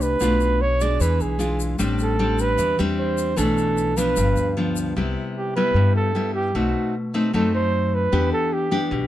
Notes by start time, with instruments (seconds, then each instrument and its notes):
Already playing: upright bass C2, nylon-string guitar C3 A3 D4 G4
0.01 flugelhorn B4, shaker
0.20 upright bass B1, nylon-string guitar B2 A3 D4 F4, shaker
0.41 shaker
0.61 flugelhorn C#5
0.81 nylon-string guitar G#3 D4, flugelhorn D5, shaker
1.00 upright bass E2, nylon-string guitar E3, flugelhorn B4, shaker
1.20 upright bass B1, flugelhorn G#4, shaker
1.39 nylon-string guitar G#3 D4 F4, shaker
1.60 shaker
1.78 upright bass A1, nylon-string guitar A2 G3 C4 D4, shaker
1.99 flugelhorn A4, shaker
2.19 nylon-string guitar G3 C4 D4
2.39 flugelhorn B4, shaker
2.58 upright bass E2, nylon-string guitar E3, shaker
2.79 upright bass E2, nylon-string guitar G3 C4 D4, shaker
2.99 flugelhorn C5
3.18 shaker
3.36 upright bass B1, nylon-string guitar B2 E3 A3 D4, flugelhorn A4, shaker
3.58 shaker
3.77 shaker
3.97 nylon-string guitar F3 B3 D4, flugelhorn B4, shaker
4.16 upright bass G1, nylon-string guitar G2, shaker
4.37 upright bass D2, shaker
4.57 nylon-string guitar F3 B3 D4
4.76 shaker
4.96 upright bass C2, nylon-string guitar C3 G3 B3 E4
5.37 flugelhorn G4
5.56 nylon-string guitar G3 B3 E4, flugelhorn B4
5.74 upright bass G2, nylon-string guitar G2
5.96 flugelhorn A4
6.15 nylon-string guitar G3 B3 E4
6.34 flugelhorn G4
6.55 upright bass B1, nylon-string guitar B2 A3 C4 D#4, flugelhorn F#4
7.14 nylon-string guitar A3 C4 D#4
7.33 upright bass F#2, nylon-string guitar F#3 A3 C4 D#4, flugelhorn A4
7.54 flugelhorn C5
7.95 flugelhorn B4
8.12 upright bass E2, nylon-string guitar E3 B3 D4 G4
8.32 flugelhorn A4
8.53 flugelhorn G4
8.71 nylon-string guitar B3 D4 G4
8.91 upright bass B1, nylon-string guitar B2